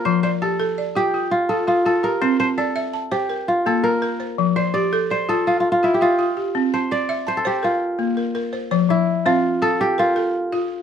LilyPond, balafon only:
\new Staff \with { instrumentName = "Balafon" } { \time 12/8 \key f \major \tempo 4. = 111 << { c''8 d''8 g'4 d''4 f'4. f'4 g'8~ | g'8 a''8 d''4 a''4 bes'4. bes'4 c''8~ | c''8 d''8 g'4 d''4 f'4. f'4 g'8~ | g'8 a''8 d''4 a''4 bes'4. bes'4 c''8 |
c''8 f4 c''4. r8 bes'4. r4 | } \\ { f4 r8 a'4 f'4 r8 f'4 f'4 | c'4 r8 e''4 c''8 r4 bes4 bes'4 | f4 r8 a'4 f'4 r8 f'4 f'4 | c'4 r8 e''4 c''8 r4 bes4 bes'4 |
f4 r8 c'4 f'4 r8 a'4 f'4 | } >> }